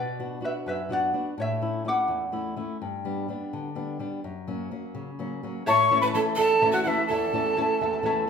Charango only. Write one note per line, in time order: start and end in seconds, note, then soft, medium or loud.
0.00 0.41 B4 medium
0.00 0.41 D5 medium
0.44 0.51 B4 medium
0.44 0.51 E5 medium
0.68 0.90 B4 medium
0.68 0.93 E5 medium
0.92 1.36 D5 medium
0.92 1.41 F#5 medium
1.40 1.84 C#5 medium
1.40 1.88 E5 medium
1.88 2.55 F#5 medium
1.88 2.55 D6 medium
5.66 5.91 E4 medium
5.66 5.91 A4 medium
5.66 5.90 C#5 medium
5.66 5.90 E5 medium
5.66 5.91 A5 medium
5.91 6.03 E4 medium
5.91 6.03 A4 medium
5.91 6.03 E5 medium
5.91 6.02 A5 medium
6.03 6.14 E4 soft
6.03 6.14 A4 soft
6.03 6.15 A5 medium
6.15 6.38 E4 medium
6.15 6.38 A4 medium
6.15 6.38 C#5 medium
6.15 6.38 E5 medium
6.15 6.39 A5 medium
6.39 6.51 E4 medium
6.39 6.50 A4 medium
6.39 6.49 E5 medium
6.39 6.48 A5 medium
6.50 6.61 E4 soft
6.50 6.61 A4 medium
6.50 6.62 A5 medium
6.62 6.85 E4 medium
6.62 6.85 A4 medium
6.62 6.85 C#5 medium
6.62 6.84 E5 medium
6.62 6.86 A5 medium
6.85 6.98 E4 medium
6.85 6.98 A4 medium
6.85 6.97 E5 medium
6.85 6.96 A5 medium
6.97 7.09 E4 soft
6.97 7.09 A4 medium
6.97 7.09 A5 medium
7.10 7.33 E4 medium
7.10 7.34 A4 medium
7.10 7.33 C#5 medium
7.10 7.33 E5 medium
7.10 7.34 A5 medium
7.34 7.45 E4 medium
7.34 7.46 A4 medium
7.34 7.45 E5 medium
7.34 7.45 A5 medium
7.46 7.57 E4 soft
7.46 7.57 A4 soft
7.46 7.57 A5 medium
7.57 7.81 E4 medium
7.57 7.81 A4 medium
7.57 7.80 C#5 medium
7.57 7.80 E5 medium
7.57 7.81 A5 loud
7.82 7.93 E4 medium
7.82 7.93 A4 medium
7.82 7.93 E5 medium
7.82 7.92 A5 medium
7.93 8.05 E4 medium
7.93 8.05 A4 medium
7.93 8.05 A5 medium
8.05 8.28 E4 medium
8.05 8.29 A4 loud
8.05 8.28 C#5 medium
8.05 8.28 E5 medium
8.05 8.29 A5 medium